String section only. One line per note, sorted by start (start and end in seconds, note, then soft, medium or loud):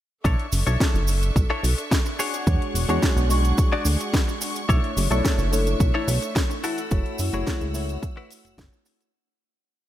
0.25 4.65 D4 medium
0.25 2.18 A4 medium
0.25 2.18 E5 medium
0.25 6.60 C#6 medium
2.20 4.67 G#4 medium
2.20 4.67 F#5 medium
4.69 9.10 A3 medium
4.69 6.62 D4 medium
4.69 6.62 E5 medium
6.64 9.12 F#5 medium
6.64 9.11 E6 medium